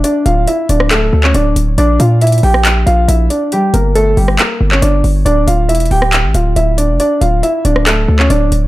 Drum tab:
HH |x---x---x---x---x-------x---x---|x---x---xxxxo---x---x---x---x---|x---x---x---o---x-------x---o---|x---x---xxxxo---x---x---x---x---|
CP |----------------x-----x---------|----------------x---------------|----------------x-----x---------|----------------x---------------|
SD |--------------r-----------------|--------------r-----------------|--------------r-----------------|--------------r-----------------|

HH |x---x---x---x---x-------x---x---|
CP |----------------x-----x---------|
SD |--------------r-----------------|